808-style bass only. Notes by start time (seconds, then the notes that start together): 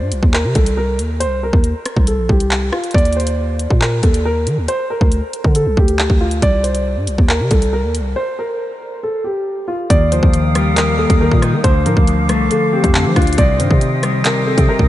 0.01 G2
0.12 C2
0.23 D#2
0.44 C3
0.55 C2
0.99 D#2
1.26 C2
1.53 D#2
1.97 C2
2.18 A#1
2.29 C2
2.94 D#2
3.70 A#2
4.03 D#2
4.47 D#3
4.58 D#2
5.01 D2
5.44 D3
5.66 C2
5.77 D2
6.10 D2
6.42 C2
6.97 G2
7.07 C2
7.18 D#2
7.40 C3
7.51 C2
7.84 D#2
8.00 C2
9.90 D#2
10.23 D#2
11.10 D#2
11.32 A#2
11.53 D#3
11.64 D2
11.86 A2
11.97 D2
12.29 C2
12.84 F2
13.05 F3
13.16 D2
13.38 C2
13.60 G2
13.71 C3
14.58 C3
14.79 C2